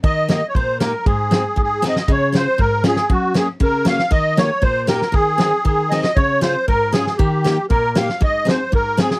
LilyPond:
<<
  \new Staff \with { instrumentName = "Accordion" } { \time 2/4 \key aes \major \tempo 4 = 117 ees''8 ees''16. des''32 c''8 bes'8 | aes'4 aes'8 ees''8 | \key des \major des''8 c''8 bes'8 aes'8 | ges'8 aes'8 bes'8 f''8 |
ees''8 des''8 c''8 bes'8 | aes'4 aes'8 ees''8 | des''8 c''8 bes'8 aes'8 | g'4 bes'8 f''8 |
ees''8 c''8 bes'8 aes'8 | }
  \new Staff \with { instrumentName = "Steel-string acoustic guitar" } { \time 2/4 \key aes \major << { r8 <bes ees' g'>8 r8 <bes ees' g'>8 | r8 <c' ees' aes'>8 r8 <c' ees' aes'>8 | \key des \major r8 <des' f' aes'>8 r8 <des' f' aes'>8 | r8 <bes des' ges'>8 r8 <bes des' ges'>8 |
r8 <bes ees' g'>8 r8 <bes ees' g'>8 | r8 <c' ees' aes'>8 r8 <c' ees' aes'>8 | r8 <des' f' aes'>8 r8 <des' f' aes'>8 | r8 <bes ees' g'>8 r8 <bes ees' g'>8 |
r8 <c' ees' aes'>8 r8 <c' ees' aes'>8 | } \\ { ees4 bes,4 | aes,4 aes,4 | des4 aes,4 | ges,4 des4 |
ees4 bes,4 | ees4 ees4 | des4 aes,4 | ees4 bes,4 |
aes,4 aes,4 | } >> }
  \new DrumStaff \with { instrumentName = "Drums" } \drummode { \time 2/4 bd8 sn8 bd8 sn8 | bd8 sn8 bd8 sn16 sn16 | bd8 sn8 bd8 sn16 sn16 | bd8 sn8 bd8 sn16 sn16 |
bd8 sn8 bd8 sn16 sn16 | bd8 sn8 bd8 sn16 sn16 | bd8 sn8 bd8 sn16 sn16 | bd8 sn8 bd8 sn16 sn16 |
bd8 sn8 bd8 sn16 sn16 | }
>>